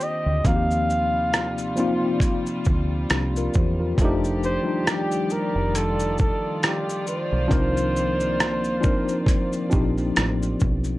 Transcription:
0.00 0.42 D#3 medium
0.00 0.43 C4 medium
0.00 0.42 G4 medium
0.00 0.48 D#5 loud
0.00 shaker soft
0.26 0.42 D2 medium
0.44 1.98 D#2 loud
0.44 3.94 C3 medium
0.44 1.44 F3 medium
0.44 3.94 G3 medium
0.44 1.45 A#3 medium
0.44 1.45 C4 medium
0.44 1.46 D#4 medium
0.44 3.94 F4 medium
0.44 2.22 F5 loud
0.44 kick loud
0.44 closed hi-hat medium
0.44 shaker medium
0.49 0.54 F#4 medium
0.56 1.50 G4 loud
0.71 shaker soft
0.90 shaker soft
1.34 cross-stick loud
1.34 closed hi-hat medium
1.34 shaker medium
1.58 shaker soft
1.76 2.44 F3 medium
1.76 2.45 A#3 medium
1.76 2.45 C4 medium
1.76 2.46 D#4 medium
1.76 shaker soft
1.80 2.46 F4 medium
2.20 kick medium
2.20 closed hi-hat medium
2.20 shaker medium
2.46 shaker soft
2.65 3.04 D2 medium
2.65 kick medium
2.65 shaker soft
3.10 3.48 C2 medium
3.10 3.34 D4 medium
3.10 3.34 G4 medium
3.10 cross-stick loud
3.10 closed hi-hat medium
3.10 shaker medium
3.36 3.55 F4 medium
3.36 3.55 A#4 medium
3.36 shaker soft
3.54 3.93 E2 loud
3.54 3.78 G4 medium
3.54 3.78 C5 medium
3.54 kick medium
3.54 shaker soft
3.80 4.21 F4 medium
3.80 4.21 A#4 medium
3.98 4.57 F1 loud
3.98 10.98 D#3 medium
3.98 4.49 F3 loud
3.98 7.48 G3 medium
3.98 5.73 G4 medium
3.98 10.98 D5 medium
3.98 kick loud
3.98 closed hi-hat medium
3.98 shaker medium
4.02 4.50 A3 loud
4.02 4.50 D4 loud
4.02 4.51 D#4 loud
4.02 4.51 G4 loud
4.24 shaker soft
4.43 4.90 C5 loud
4.43 shaker soft
4.63 5.96 F3 medium
4.63 5.96 G3 medium
4.63 5.97 D4 medium
4.63 5.97 D#4 medium
4.68 5.98 G4 medium
4.87 5.33 G4 loud
4.87 cross-stick loud
4.87 closed hi-hat medium
4.87 shaker medium
5.11 shaker soft
5.30 5.78 A#4 loud
5.30 shaker medium
5.55 6.31 F1 medium
5.74 10.98 F4 medium
5.74 6.19 A4 loud
5.74 closed hi-hat medium
5.74 shaker medium
5.99 shaker soft
6.18 6.66 A4 loud
6.18 kick medium
6.18 shaker soft
6.63 7.07 G4 medium
6.63 cross-stick loud
6.63 closed hi-hat medium
6.63 shaker medium
6.89 shaker soft
7.07 10.12 C5 loud
7.07 shaker medium
7.32 7.49 B1 medium
7.48 8.48 F3 loud
7.48 10.98 A#3 medium
7.48 8.49 C4 medium
7.48 8.49 D4 medium
7.48 8.50 D#4 medium
7.48 kick loud
7.48 closed hi-hat medium
7.48 shaker medium
7.52 9.04 C2 medium
7.52 8.51 A#4 loud
7.77 shaker soft
7.96 shaker soft
8.20 shaker soft
8.40 cross-stick loud
8.40 closed hi-hat medium
8.40 shaker medium
8.64 shaker soft
8.80 9.49 F3 medium
8.80 9.50 C4 medium
8.80 9.50 D4 medium
8.80 9.51 D#4 medium
8.80 kick medium
8.80 shaker medium
8.85 9.52 A#4 loud
9.08 shaker soft
9.26 kick loud
9.26 closed hi-hat medium
9.26 shaker medium
9.53 shaker medium
9.69 10.70 F3 medium
9.69 10.70 C4 medium
9.69 10.71 D4 medium
9.69 10.71 D#4 medium
9.69 kick medium
9.69 shaker soft
9.73 10.10 A#1 loud
9.73 10.72 G4 medium
9.98 shaker soft
10.16 10.54 A1 medium
10.16 cross-stick loud
10.16 closed hi-hat medium
10.16 shaker medium
10.43 shaker soft
10.60 10.98 B1 medium
10.60 kick medium
10.60 shaker soft
10.84 shaker soft

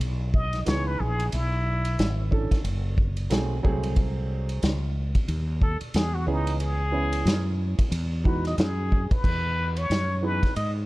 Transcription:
0.00 0.63 B1 medium
0.00 ride medium
0.34 0.68 D#5 loud
0.34 kick loud
0.53 snare soft
0.53 ride medium
0.65 0.98 C#2 medium
0.65 1.32 E3 medium
0.65 1.33 B3 medium
0.65 1.33 D#4 medium
0.65 1.33 G#4 medium
0.65 0.88 C#5 medium
0.65 snare loud
0.65 hi-hat pedal soft
0.65 ride medium
0.87 1.01 B4 loud
1.00 1.31 A#1 loud
1.00 1.32 G#4 medium
1.20 ride medium
1.32 1.96 B1 medium
1.32 2.27 E4 medium
1.32 ride medium
1.85 ride medium
1.99 2.49 G#1 loud
1.99 snare loud
1.99 hi-hat pedal medium
1.99 ride medium
2.31 2.56 E3 medium
2.31 2.56 C#4 medium
2.31 2.57 D4 medium
2.31 2.57 A4 medium
2.31 kick medium
2.51 muted fretless electric bass stroke medium
2.51 kick medium
2.51 snare soft
2.51 ride medium
2.64 3.27 F#1 medium
2.64 ride medium
2.98 kick medium
3.17 ride medium
3.30 3.62 B1 medium
3.30 3.55 F#3 medium
3.30 3.56 A3 medium
3.30 3.56 C4 medium
3.30 3.56 G#4 medium
3.30 snare loud
3.30 hi-hat pedal medium
3.30 ride medium
3.63 4.59 C2 medium
3.63 4.70 F#3 medium
3.63 4.71 A3 medium
3.63 4.71 C4 medium
3.63 4.71 G#4 loud
3.63 kick medium
3.83 ride medium
3.96 kick loud
3.96 ride medium
4.49 ride medium
4.63 5.13 C#2 loud
4.63 snare loud
4.63 hi-hat pedal soft
4.63 ride medium
5.15 kick medium
5.15 ride medium
5.28 5.78 D#2 loud
5.28 ride medium
5.62 5.77 A4 loud
5.62 kick loud
5.81 muted fretless electric bass stroke soft
5.81 ride medium
5.94 6.26 E2 medium
5.94 6.16 G#4 loud
5.94 snare loud
5.94 hi-hat pedal medium
5.94 ride medium
6.14 6.27 F#4 medium
6.26 7.22 C#2 loud
6.26 6.82 E3 medium
6.26 6.82 B3 medium
6.26 6.83 C#4 medium
6.26 6.58 D#4 medium
6.26 6.83 G#4 medium
6.47 ride medium
6.60 7.55 G#4 loud
6.60 ride medium
6.91 7.86 E3 medium
6.91 7.86 B3 medium
6.91 7.87 C#4 medium
6.91 7.87 E4 medium
7.12 ride medium
7.25 7.76 F#2 loud
7.25 snare loud
7.25 hi-hat pedal medium
7.25 ride medium
7.79 muted fretless electric bass stroke soft
7.79 kick medium
7.79 ride medium
7.92 8.55 E2 loud
7.92 ride medium
8.24 8.49 E3 medium
8.24 8.50 G#3 medium
8.24 8.50 D#4 medium
8.24 8.50 F#4 medium
8.24 kick loud
8.28 8.45 B4 medium
8.45 8.57 D#5 medium
8.45 snare soft
8.45 ride medium
8.58 9.08 F#2 loud
8.58 9.14 G#4 medium
8.58 snare loud
8.58 hi-hat pedal soft
8.58 ride medium
8.92 kick medium
9.11 9.80 B4 loud
9.11 kick loud
9.11 ride medium
9.24 9.87 E2 medium
9.24 kick loud
9.24 crash medium
9.77 10.26 C#5 loud
9.77 ride medium
9.90 10.40 F#2 medium
9.90 snare loud
9.90 hi-hat pedal soft
9.90 ride medium
10.22 10.47 E3 medium
10.22 10.48 B3 medium
10.22 10.48 D#4 medium
10.22 10.48 G#4 medium
10.22 10.56 B4 loud
10.43 kick medium
10.43 snare soft
10.43 ride medium
10.56 10.86 G#2 medium
10.56 10.71 D#5 loud
10.56 ride medium

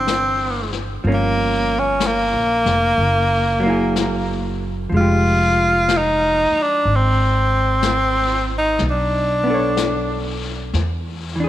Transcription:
0.00 0.99 G1 medium
0.00 1.03 E3 soft
0.00 0.73 C4 medium
0.00 1.05 D4 soft
0.07 brush sweep soft
0.07 snare soft
0.07 hi-hat pedal soft
0.72 snare soft
1.04 2.29 G1 medium
1.04 2.98 F3 soft
1.04 2.99 A#3 soft
1.04 brush sweep soft
1.08 3.00 C#4 soft
1.14 1.81 A#3 medium
1.79 2.08 C#4 medium
2.00 brush sweep soft
2.00 snare soft
2.00 hi-hat pedal soft
2.07 4.62 A#3 medium
2.34 2.63 A#1 soft
2.65 2.95 F1 medium
2.65 snare soft
2.98 4.88 F#1 medium
2.98 brush sweep soft
3.60 4.91 F#3 soft
3.60 4.92 A#3 soft
3.67 4.94 E4 soft
3.67 4.96 G#4 soft
3.96 brush sweep soft
3.96 snare soft
3.96 hi-hat pedal soft
4.90 6.50 F1 medium
4.90 8.79 F3 soft
4.90 brush sweep soft
4.94 8.81 G#3 soft
4.94 5.99 F4 medium
5.00 8.84 G4 soft
5.88 brush sweep soft
5.88 snare soft
5.88 hi-hat pedal soft
5.98 6.64 D#4 medium
6.52 muted upright bass stroke soft
6.62 6.97 D4 medium
6.85 8.76 G#1 medium
6.85 brush sweep soft
6.96 8.52 C4 medium
7.82 brush sweep soft
7.82 snare soft
7.82 hi-hat pedal soft
8.58 8.83 D#4 medium
8.79 10.70 B1 medium
8.79 brush sweep soft
8.79 snare soft
8.90 10.42 D4 medium
9.44 10.73 B3 soft
9.44 10.75 D4 soft
9.50 10.77 A4 soft
9.54 10.79 C#5 soft
9.77 brush sweep soft
9.77 snare soft
9.77 hi-hat pedal soft
10.73 11.49 E2 medium
10.73 brush sweep soft
10.73 snare soft
11.36 11.49 E3 soft
11.40 11.49 D4 soft
11.40 11.49 G#4 soft

